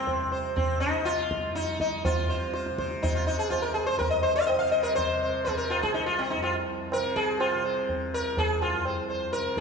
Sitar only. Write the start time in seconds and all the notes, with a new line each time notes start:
Already playing: C4
0.32 C5
0.56 C4
0.80 D#4
1.05 F4
1.56 D#4
1.81 D#4
2.05 F4
2.29 C5
2.54 C5
2.79 C5
3.02 D#4
3.15 F4
3.27 D#4
3.39 G#4
3.50 F4
3.62 A#4
3.74 G#4
3.86 C5
3.99 A#4
4.10 D#5
4.23 C5
4.36 F5
4.47 D#5
4.59 F5
4.72 D#5
4.83 A#4
4.95 C5
5.23 C5
5.45 G#4
5.57 A#4
5.70 F4
5.83 G#4
5.94 D#4
6.06 F4
6.19 C4
6.30 D#4
6.42 F4
6.93 A#4
7.16 G#4
7.40 F4
7.64 C5
8.14 A#4
8.38 G#4
8.62 F4
8.85 C5
9.10 C5
9.33 A#4